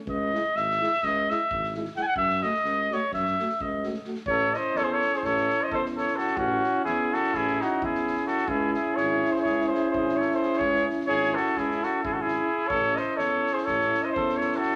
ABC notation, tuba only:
X:1
M:9/8
L:1/8
Q:3/8=85
K:none
V:1 name="Tuba" clef=bass
^C,,2 ^G,,,2 C,,2 G,,,3 | ^F,,2 ^C,,2 F,,2 C,,3 | A,,,2 E,,2 A,,,2 E,,3 | A,,,2 E,,2 A,,,2 E,,3 |
^C,,2 ^G,,,2 C,,2 G,,,3 | ^C,,2 ^G,,,2 C,,2 G,,,3 | A,,,2 E,,2 A,,,2 E,,3 |]